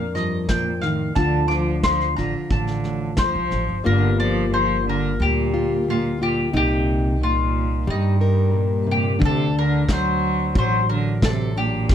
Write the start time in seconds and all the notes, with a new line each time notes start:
Already playing: F2 A#2 D4 A#4 F5
0.14 G2 F3 D#5, snare
0.48 A#2 F3 G5, kick, snare
0.80 A2 D#3 F5, snare
1.15 D2 D3 F3 D4 F4 A5, kick, snare
1.48 F3 D4 D6, snare
1.83 F3 C6, muted steel-string acoustic guitar stroke, kick, snare
2.01 snare
2.16 A1 D3 F4 A#5, snare
2.50 A1 D3 A5, kick, snare
2.67 snare
2.84 A2, snare
3.17 D2 F3 C5, muted steel-string acoustic guitar stroke, kick, snare
3.35 C2
3.51 A1, snare
3.69 G1
3.83 G1 G2 D3 G3 A#3 F4 A#4
4.19 F3 D5
4.52 F3 C5, muted steel-string acoustic guitar stroke
4.86 D3 A#4
5.20 D2 A#2 G3 G4
5.54 F4
5.88 A#2 F4, muted steel-string acoustic guitar stroke
6.21 A#2 F4 G4
6.53 C2 A#2 C3 D#4 G4
7.21 A#2 F4, muted steel-string acoustic guitar stroke
7.87 G2 G3 D#4
8.21 A#4
8.53 A#2
8.87 C3
8.91 A#2 G4
9.19 D2 D3 D4, kick
9.24 C3 A4
9.59 D3 A#4
9.88 F#3, muted steel-string acoustic guitar stroke, kick, snare
9.93 C5
10.55 A1 F#3 C5, kick
10.89 D3 A#4
11.22 C3 A4, muted steel-string acoustic guitar stroke, kick, snare
11.56 A#2 D4 G4
11.89 G1 G2 G3, kick, snare